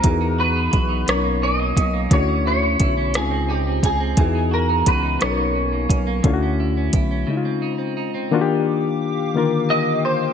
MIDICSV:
0, 0, Header, 1, 7, 480
1, 0, Start_track
1, 0, Tempo, 689655
1, 27, Time_signature, 6, 3, 24, 8
1, 7190, End_track
2, 0, Start_track
2, 0, Title_t, "Analog synth pad"
2, 0, Program_c, 0, 89
2, 5781, Note_on_c, 0, 86, 84
2, 5783, Note_on_c, 0, 77, 67
2, 5785, Note_on_c, 0, 79, 73
2, 5786, Note_on_c, 0, 67, 77
2, 7190, Note_off_c, 0, 67, 0
2, 7190, Note_off_c, 0, 77, 0
2, 7190, Note_off_c, 0, 79, 0
2, 7190, Note_off_c, 0, 86, 0
2, 7190, End_track
3, 0, Start_track
3, 0, Title_t, "Clean electric guitar"
3, 0, Program_c, 1, 27
3, 0, Note_on_c, 1, 70, 74
3, 275, Note_off_c, 1, 70, 0
3, 278, Note_on_c, 1, 71, 83
3, 759, Note_off_c, 1, 71, 0
3, 762, Note_on_c, 1, 73, 87
3, 978, Note_off_c, 1, 73, 0
3, 998, Note_on_c, 1, 75, 95
3, 1481, Note_off_c, 1, 75, 0
3, 1484, Note_on_c, 1, 73, 97
3, 1699, Note_off_c, 1, 73, 0
3, 1721, Note_on_c, 1, 73, 92
3, 2203, Note_on_c, 1, 68, 80
3, 2208, Note_off_c, 1, 73, 0
3, 2432, Note_off_c, 1, 68, 0
3, 2435, Note_on_c, 1, 67, 73
3, 2677, Note_off_c, 1, 67, 0
3, 2679, Note_on_c, 1, 68, 79
3, 3154, Note_off_c, 1, 68, 0
3, 3157, Note_on_c, 1, 70, 77
3, 3396, Note_on_c, 1, 71, 80
3, 3399, Note_off_c, 1, 70, 0
3, 3615, Note_off_c, 1, 71, 0
3, 3629, Note_on_c, 1, 73, 80
3, 5280, Note_off_c, 1, 73, 0
3, 6753, Note_on_c, 1, 75, 106
3, 6992, Note_off_c, 1, 75, 0
3, 6995, Note_on_c, 1, 72, 91
3, 7190, Note_off_c, 1, 72, 0
3, 7190, End_track
4, 0, Start_track
4, 0, Title_t, "Reed electric piano"
4, 0, Program_c, 2, 4
4, 0, Control_c, 2, 64, 127
4, 26, Note_on_c, 2, 52, 67
4, 33, Note_on_c, 2, 59, 63
4, 36, Control_c, 2, 64, 0
4, 36, Note_on_c, 2, 63, 60
4, 41, Note_on_c, 2, 66, 62
4, 48, Note_on_c, 2, 68, 72
4, 149, Control_c, 2, 64, 127
4, 583, Note_off_c, 2, 52, 0
4, 587, Note_off_c, 2, 59, 0
4, 588, Note_off_c, 2, 63, 0
4, 591, Note_off_c, 2, 66, 0
4, 594, Note_off_c, 2, 68, 0
4, 746, Note_on_c, 2, 47, 55
4, 750, Note_on_c, 2, 54, 51
4, 755, Note_on_c, 2, 61, 53
4, 757, Control_c, 2, 64, 0
4, 762, Note_on_c, 2, 62, 42
4, 768, Note_on_c, 2, 70, 63
4, 800, Note_off_c, 2, 62, 0
4, 810, Note_on_c, 2, 63, 48
4, 888, Control_c, 2, 64, 127
4, 1303, Note_off_c, 2, 47, 0
4, 1305, Note_off_c, 2, 54, 0
4, 1308, Note_off_c, 2, 61, 0
4, 1314, Note_off_c, 2, 70, 0
4, 1335, Note_off_c, 2, 63, 0
4, 1465, Note_on_c, 2, 50, 70
4, 1471, Note_on_c, 2, 57, 61
4, 1474, Note_on_c, 2, 61, 64
4, 1475, Control_c, 2, 64, 0
4, 1485, Note_on_c, 2, 64, 61
4, 1489, Note_on_c, 2, 66, 74
4, 1580, Control_c, 2, 64, 127
4, 2023, Note_off_c, 2, 50, 0
4, 2026, Note_off_c, 2, 57, 0
4, 2027, Note_off_c, 2, 61, 0
4, 2033, Note_off_c, 2, 64, 0
4, 2034, Note_off_c, 2, 66, 0
4, 2187, Note_on_c, 2, 49, 60
4, 2192, Note_on_c, 2, 56, 53
4, 2196, Control_c, 2, 64, 0
4, 2196, Note_on_c, 2, 60, 52
4, 2205, Note_on_c, 2, 63, 51
4, 2210, Note_on_c, 2, 65, 61
4, 2310, Control_c, 2, 64, 127
4, 2744, Note_off_c, 2, 49, 0
4, 2746, Note_off_c, 2, 56, 0
4, 2748, Note_off_c, 2, 60, 0
4, 2752, Note_off_c, 2, 63, 0
4, 2755, Note_off_c, 2, 65, 0
4, 2905, Note_on_c, 2, 52, 73
4, 2912, Note_on_c, 2, 59, 65
4, 2917, Control_c, 2, 64, 0
4, 2919, Note_on_c, 2, 63, 66
4, 2924, Note_on_c, 2, 66, 63
4, 2930, Note_on_c, 2, 68, 80
4, 3037, Control_c, 2, 64, 127
4, 3463, Note_off_c, 2, 52, 0
4, 3466, Note_off_c, 2, 59, 0
4, 3470, Note_off_c, 2, 63, 0
4, 3472, Note_off_c, 2, 66, 0
4, 3475, Note_off_c, 2, 68, 0
4, 3621, Note_on_c, 2, 47, 54
4, 3626, Note_on_c, 2, 54, 54
4, 3630, Note_on_c, 2, 61, 56
4, 3636, Control_c, 2, 64, 0
4, 3639, Note_on_c, 2, 63, 54
4, 3643, Note_on_c, 2, 69, 54
4, 3681, Note_off_c, 2, 69, 0
4, 3689, Note_on_c, 2, 70, 65
4, 3746, Control_c, 2, 64, 127
4, 4181, Note_off_c, 2, 47, 0
4, 4183, Note_off_c, 2, 54, 0
4, 4185, Note_off_c, 2, 61, 0
4, 4189, Note_off_c, 2, 63, 0
4, 4215, Note_off_c, 2, 70, 0
4, 4341, Note_on_c, 2, 50, 82
4, 4347, Note_on_c, 2, 57, 80
4, 4352, Note_on_c, 2, 61, 81
4, 4355, Control_c, 2, 64, 0
4, 4359, Note_on_c, 2, 64, 73
4, 4365, Note_on_c, 2, 65, 76
4, 4401, Note_off_c, 2, 65, 0
4, 4409, Note_on_c, 2, 66, 96
4, 4459, Control_c, 2, 64, 127
4, 4901, Note_off_c, 2, 50, 0
4, 4904, Note_off_c, 2, 57, 0
4, 4906, Note_off_c, 2, 61, 0
4, 4910, Note_off_c, 2, 64, 0
4, 4935, Note_off_c, 2, 66, 0
4, 5062, Note_on_c, 2, 49, 70
4, 5068, Note_on_c, 2, 56, 63
4, 5075, Control_c, 2, 64, 0
4, 5081, Note_on_c, 2, 63, 66
4, 5087, Note_on_c, 2, 64, 58
4, 5122, Note_off_c, 2, 64, 0
4, 5131, Note_on_c, 2, 65, 75
4, 5188, Control_c, 2, 64, 127
4, 5621, Note_off_c, 2, 49, 0
4, 5624, Note_off_c, 2, 56, 0
4, 5631, Note_off_c, 2, 63, 0
4, 5656, Note_off_c, 2, 65, 0
4, 5787, Note_on_c, 2, 51, 93
4, 5792, Note_on_c, 2, 58, 89
4, 5795, Control_c, 2, 64, 0
4, 5799, Note_on_c, 2, 62, 91
4, 5805, Note_on_c, 2, 65, 87
4, 5811, Note_on_c, 2, 66, 86
4, 5844, Note_off_c, 2, 66, 0
4, 5856, Note_on_c, 2, 67, 102
4, 5919, Control_c, 2, 64, 127
4, 6343, Note_off_c, 2, 51, 0
4, 6346, Note_off_c, 2, 58, 0
4, 6350, Note_off_c, 2, 62, 0
4, 6353, Note_off_c, 2, 65, 0
4, 6378, Note_off_c, 2, 67, 0
4, 6503, Note_on_c, 2, 51, 73
4, 6512, Note_on_c, 2, 58, 68
4, 6518, Note_on_c, 2, 50, 75
4, 6522, Note_on_c, 2, 65, 73
4, 6529, Note_on_c, 2, 70, 82
4, 7062, Note_off_c, 2, 51, 0
4, 7066, Note_off_c, 2, 58, 0
4, 7069, Note_off_c, 2, 50, 0
4, 7071, Note_off_c, 2, 65, 0
4, 7075, Note_off_c, 2, 70, 0
4, 7190, End_track
5, 0, Start_track
5, 0, Title_t, "Clean electric guitar"
5, 0, Program_c, 3, 27
5, 0, Note_on_c, 3, 63, 55
5, 18, Note_on_c, 3, 52, 68
5, 142, Note_off_c, 3, 63, 0
5, 145, Note_on_c, 3, 63, 54
5, 268, Note_on_c, 3, 66, 58
5, 380, Note_off_c, 3, 63, 0
5, 389, Note_on_c, 3, 63, 51
5, 493, Note_off_c, 3, 66, 0
5, 495, Note_on_c, 3, 66, 56
5, 609, Note_off_c, 3, 63, 0
5, 617, Note_on_c, 3, 63, 53
5, 741, Note_on_c, 3, 47, 72
5, 790, Note_off_c, 3, 63, 0
5, 791, Note_off_c, 3, 52, 0
5, 862, Note_on_c, 3, 58, 53
5, 989, Note_on_c, 3, 61, 58
5, 1101, Note_off_c, 3, 58, 0
5, 1109, Note_on_c, 3, 58, 55
5, 1223, Note_off_c, 3, 61, 0
5, 1226, Note_on_c, 3, 61, 58
5, 1337, Note_off_c, 3, 58, 0
5, 1346, Note_on_c, 3, 58, 54
5, 1460, Note_off_c, 3, 47, 0
5, 1462, Note_on_c, 3, 50, 76
5, 1514, Note_off_c, 3, 58, 0
5, 1589, Note_off_c, 3, 61, 0
5, 1589, Note_on_c, 3, 61, 56
5, 1710, Note_on_c, 3, 64, 58
5, 1731, Note_off_c, 3, 66, 0
5, 1814, Note_off_c, 3, 61, 0
5, 1823, Note_on_c, 3, 61, 53
5, 1941, Note_off_c, 3, 64, 0
5, 1949, Note_on_c, 3, 64, 57
5, 2060, Note_off_c, 3, 61, 0
5, 2069, Note_on_c, 3, 61, 52
5, 2184, Note_off_c, 3, 50, 0
5, 2187, Note_on_c, 3, 49, 69
5, 2236, Note_off_c, 3, 61, 0
5, 2236, Note_off_c, 3, 64, 0
5, 2303, Note_on_c, 3, 60, 58
5, 2425, Note_on_c, 3, 63, 55
5, 2545, Note_off_c, 3, 60, 0
5, 2555, Note_on_c, 3, 60, 54
5, 2661, Note_off_c, 3, 63, 0
5, 2663, Note_on_c, 3, 63, 59
5, 2777, Note_off_c, 3, 60, 0
5, 2785, Note_on_c, 3, 60, 55
5, 2905, Note_on_c, 3, 52, 75
5, 2954, Note_off_c, 3, 60, 0
5, 2955, Note_off_c, 3, 49, 0
5, 3024, Note_off_c, 3, 63, 0
5, 3027, Note_on_c, 3, 63, 59
5, 3140, Note_on_c, 3, 66, 61
5, 3258, Note_off_c, 3, 63, 0
5, 3267, Note_on_c, 3, 63, 53
5, 3388, Note_off_c, 3, 66, 0
5, 3391, Note_on_c, 3, 66, 58
5, 3494, Note_off_c, 3, 63, 0
5, 3502, Note_on_c, 3, 63, 53
5, 3615, Note_on_c, 3, 47, 73
5, 3673, Note_off_c, 3, 63, 0
5, 3674, Note_off_c, 3, 52, 0
5, 3740, Note_on_c, 3, 58, 59
5, 3864, Note_on_c, 3, 61, 60
5, 3976, Note_off_c, 3, 58, 0
5, 3984, Note_on_c, 3, 58, 54
5, 4097, Note_off_c, 3, 61, 0
5, 4099, Note_on_c, 3, 61, 61
5, 4215, Note_off_c, 3, 58, 0
5, 4224, Note_on_c, 3, 58, 53
5, 4333, Note_off_c, 3, 47, 0
5, 4335, Note_on_c, 3, 50, 79
5, 4393, Note_off_c, 3, 58, 0
5, 4472, Note_off_c, 3, 61, 0
5, 4472, Note_on_c, 3, 61, 57
5, 4593, Note_on_c, 3, 64, 61
5, 4614, Note_off_c, 3, 66, 0
5, 4706, Note_off_c, 3, 61, 0
5, 4714, Note_on_c, 3, 61, 55
5, 4829, Note_off_c, 3, 64, 0
5, 4837, Note_on_c, 3, 64, 60
5, 4939, Note_off_c, 3, 61, 0
5, 4947, Note_on_c, 3, 61, 54
5, 5056, Note_off_c, 3, 50, 0
5, 5059, Note_on_c, 3, 49, 72
5, 5115, Note_off_c, 3, 61, 0
5, 5120, Note_off_c, 3, 64, 0
5, 5186, Note_on_c, 3, 60, 57
5, 5303, Note_on_c, 3, 63, 58
5, 5409, Note_off_c, 3, 60, 0
5, 5417, Note_on_c, 3, 60, 52
5, 5543, Note_off_c, 3, 63, 0
5, 5546, Note_on_c, 3, 63, 59
5, 5659, Note_off_c, 3, 60, 0
5, 5668, Note_on_c, 3, 60, 54
5, 5831, Note_off_c, 3, 49, 0
5, 5835, Note_off_c, 3, 60, 0
5, 6183, Note_off_c, 3, 63, 0
5, 7190, End_track
6, 0, Start_track
6, 0, Title_t, "Analog synth bass"
6, 0, Program_c, 4, 38
6, 33, Note_on_c, 4, 40, 92
6, 483, Note_off_c, 4, 40, 0
6, 517, Note_on_c, 4, 35, 82
6, 729, Note_off_c, 4, 35, 0
6, 756, Note_on_c, 4, 35, 93
6, 1204, Note_off_c, 4, 35, 0
6, 1235, Note_on_c, 4, 35, 81
6, 1448, Note_off_c, 4, 35, 0
6, 1476, Note_on_c, 4, 38, 95
6, 1924, Note_off_c, 4, 38, 0
6, 1957, Note_on_c, 4, 35, 85
6, 2203, Note_on_c, 4, 37, 103
6, 2214, Note_off_c, 4, 35, 0
6, 2648, Note_off_c, 4, 37, 0
6, 2675, Note_on_c, 4, 37, 82
6, 2887, Note_off_c, 4, 37, 0
6, 2913, Note_on_c, 4, 40, 99
6, 3362, Note_off_c, 4, 40, 0
6, 3393, Note_on_c, 4, 37, 81
6, 3606, Note_off_c, 4, 37, 0
6, 3643, Note_on_c, 4, 35, 96
6, 4087, Note_off_c, 4, 35, 0
6, 4110, Note_on_c, 4, 35, 81
6, 4325, Note_off_c, 4, 35, 0
6, 4352, Note_on_c, 4, 38, 98
6, 4802, Note_off_c, 4, 38, 0
6, 4834, Note_on_c, 4, 35, 82
6, 5047, Note_off_c, 4, 35, 0
6, 7190, End_track
7, 0, Start_track
7, 0, Title_t, "Drums"
7, 25, Note_on_c, 9, 42, 72
7, 28, Note_on_c, 9, 36, 97
7, 94, Note_off_c, 9, 42, 0
7, 98, Note_off_c, 9, 36, 0
7, 508, Note_on_c, 9, 42, 62
7, 510, Note_on_c, 9, 36, 78
7, 577, Note_off_c, 9, 42, 0
7, 580, Note_off_c, 9, 36, 0
7, 750, Note_on_c, 9, 42, 58
7, 759, Note_on_c, 9, 37, 98
7, 820, Note_off_c, 9, 42, 0
7, 828, Note_off_c, 9, 37, 0
7, 1230, Note_on_c, 9, 36, 81
7, 1234, Note_on_c, 9, 42, 59
7, 1299, Note_off_c, 9, 36, 0
7, 1304, Note_off_c, 9, 42, 0
7, 1469, Note_on_c, 9, 36, 107
7, 1469, Note_on_c, 9, 42, 68
7, 1538, Note_off_c, 9, 36, 0
7, 1538, Note_off_c, 9, 42, 0
7, 1946, Note_on_c, 9, 42, 63
7, 1949, Note_on_c, 9, 36, 76
7, 2015, Note_off_c, 9, 42, 0
7, 2019, Note_off_c, 9, 36, 0
7, 2186, Note_on_c, 9, 42, 57
7, 2194, Note_on_c, 9, 37, 100
7, 2255, Note_off_c, 9, 42, 0
7, 2264, Note_off_c, 9, 37, 0
7, 2666, Note_on_c, 9, 36, 82
7, 2669, Note_on_c, 9, 42, 60
7, 2736, Note_off_c, 9, 36, 0
7, 2739, Note_off_c, 9, 42, 0
7, 2902, Note_on_c, 9, 42, 69
7, 2905, Note_on_c, 9, 36, 102
7, 2972, Note_off_c, 9, 42, 0
7, 2974, Note_off_c, 9, 36, 0
7, 3385, Note_on_c, 9, 42, 68
7, 3387, Note_on_c, 9, 36, 81
7, 3454, Note_off_c, 9, 42, 0
7, 3456, Note_off_c, 9, 36, 0
7, 3624, Note_on_c, 9, 42, 60
7, 3633, Note_on_c, 9, 37, 100
7, 3694, Note_off_c, 9, 42, 0
7, 3703, Note_off_c, 9, 37, 0
7, 4104, Note_on_c, 9, 36, 84
7, 4109, Note_on_c, 9, 42, 63
7, 4173, Note_off_c, 9, 36, 0
7, 4179, Note_off_c, 9, 42, 0
7, 4342, Note_on_c, 9, 42, 73
7, 4343, Note_on_c, 9, 36, 104
7, 4412, Note_off_c, 9, 42, 0
7, 4413, Note_off_c, 9, 36, 0
7, 4823, Note_on_c, 9, 42, 66
7, 4826, Note_on_c, 9, 36, 76
7, 4892, Note_off_c, 9, 42, 0
7, 4896, Note_off_c, 9, 36, 0
7, 7190, End_track
0, 0, End_of_file